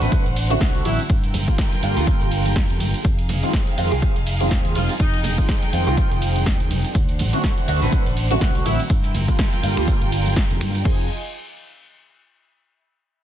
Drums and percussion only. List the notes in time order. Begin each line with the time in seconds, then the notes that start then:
0.02 open hi-hat, tambourine, shaker
0.12 kick, closed hi-hat, tambourine, high conga, low conga, shaker
0.26 closed hi-hat, tambourine
0.36 open hi-hat, ride, shaker
0.50 closed hi-hat, tambourine, high conga, shaker
0.61 kick, snare, closed hi-hat, tambourine, shaker
0.75 closed hi-hat, tambourine
0.85 open hi-hat, ride, high conga, shaker
0.99 closed hi-hat, tambourine, shaker
1.10 kick, closed hi-hat, shaker
1.24 closed hi-hat, tambourine
1.34 open hi-hat, ride, high conga, low conga, shaker
1.48 kick, closed hi-hat, tambourine, shaker
1.58 kick, snare, closed hi-hat, tambourine, shaker
1.72 closed hi-hat, tambourine, high conga
1.83 open hi-hat, ride, shaker
1.97 open hi-hat, tambourine, shaker
2.07 kick, closed hi-hat, tambourine, high conga, shaker
2.20 closed hi-hat, tambourine
2.32 open hi-hat, ride, shaker
2.45 closed hi-hat, tambourine, high conga, shaker
2.56 kick, snare, closed hi-hat, tambourine, shaker
2.70 closed hi-hat, tambourine
2.80 open hi-hat, ride, high conga, shaker
2.94 closed hi-hat, tambourine, shaker
3.05 kick, closed hi-hat, shaker
3.19 closed hi-hat, tambourine
3.29 open hi-hat, ride, high conga, low conga, shaker
3.43 closed hi-hat, tambourine, shaker
3.53 kick, snare, closed hi-hat, tambourine, shaker
3.67 closed hi-hat, tambourine, high conga
3.78 open hi-hat, ride, shaker
3.92 open hi-hat, tambourine, shaker
4.02 kick, closed hi-hat, tambourine, high conga, low conga, shaker
4.16 closed hi-hat, tambourine
4.27 open hi-hat, ride, shaker
4.41 closed hi-hat, tambourine, high conga, shaker
4.51 kick, snare, closed hi-hat, shaker
4.65 closed hi-hat, tambourine
4.75 open hi-hat, ride, high conga, shaker
4.89 closed hi-hat, tambourine, shaker
5.00 kick, closed hi-hat, tambourine, shaker
5.14 closed hi-hat, tambourine
5.24 open hi-hat, ride, high conga, low conga, shaker
5.38 kick, closed hi-hat, tambourine, shaker
5.49 kick, snare, closed hi-hat, tambourine, shaker
5.63 closed hi-hat, tambourine, high conga
5.73 open hi-hat, ride, shaker
5.87 closed hi-hat, tambourine, shaker
5.97 kick, closed hi-hat, tambourine, high conga, shaker
6.11 closed hi-hat, tambourine
6.22 open hi-hat, ride, shaker
6.36 closed hi-hat, tambourine, high conga, shaker
6.46 kick, snare, closed hi-hat, shaker
6.60 closed hi-hat, tambourine
6.70 open hi-hat, ride, high conga, shaker
6.85 closed hi-hat, tambourine, shaker
6.95 kick, closed hi-hat, tambourine, shaker
7.09 closed hi-hat, tambourine
7.19 open hi-hat, ride, high conga, low conga, shaker
7.33 closed hi-hat, tambourine, shaker
7.44 kick, snare, closed hi-hat, tambourine, shaker
7.58 closed hi-hat, tambourine, high conga
7.68 open hi-hat, ride, shaker
7.82 open hi-hat, tambourine, shaker
7.92 kick, closed hi-hat, tambourine, high conga, low conga, shaker
8.06 closed hi-hat, tambourine
8.17 open hi-hat, ride, shaker
8.31 closed hi-hat, tambourine, high conga, shaker
8.41 kick, snare, closed hi-hat, tambourine, shaker
8.55 closed hi-hat, tambourine
8.65 open hi-hat, ride, high conga, shaker
8.79 closed hi-hat, tambourine, shaker
8.90 kick, closed hi-hat, tambourine, shaker
9.03 closed hi-hat, tambourine
9.14 open hi-hat, ride, high conga, low conga, shaker
9.28 kick, closed hi-hat, tambourine, shaker
9.39 kick, snare, closed hi-hat, tambourine, shaker
9.53 closed hi-hat, tambourine, high conga
9.63 open hi-hat, ride, shaker
9.77 finger snap, open hi-hat, tambourine, shaker
9.87 kick, closed hi-hat, tambourine, high conga, shaker
10.01 closed hi-hat, tambourine
10.12 open hi-hat, ride, shaker
10.25 closed hi-hat, tambourine, high conga, shaker
10.36 kick, snare, closed hi-hat, tambourine, shaker
10.50 closed hi-hat, tambourine, low conga
10.61 finger snap, open hi-hat, ride, high conga, shaker
10.75 closed hi-hat, tambourine, shaker
10.85 kick, crash